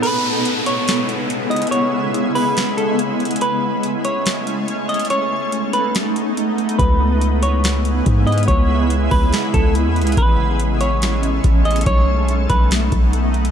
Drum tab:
HH |x-------x---x---x---x---x---xxxx|x-------x---o---x---x---x---xxxx|x-------x---x---x---x---x---xxxx|x-------x---x---x---x---x---x-x-|
SD |----------------o---------------|----------------o---------------|----------------o---------------|----------------o---------------|
BD |--------------------------------|--------------------------------|--------------------------------|--------------------------------|

HH |x-------x---x---x---x---x---xxxx|x-------x---o---x---x---x---xxxx|x-------x---x---x---x---x---xxxx|x-------x---x---x---x---x---x-x-|
SD |----------------o---------------|----------------o---------------|----------------o---------------|----------------o---------------|
BD |o-----------------------o-------|o-----------o-------o-----------|o-----------------------o-------|o-----------o-------o-----------|